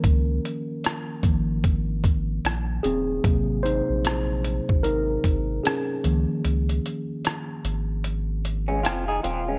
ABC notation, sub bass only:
X:1
M:4/4
L:1/16
Q:"Swing 16ths" 1/4=75
K:Db
V:1 name="Sub bass" clef=bass
D,,2 z4 A,,,6 B,,,2 E,,,2 | A,,,3 B,,,4 A,,,3 A,,,2 z2 D,, z | D,,2 z4 A,,,6 F,,,2 E,,,2 |]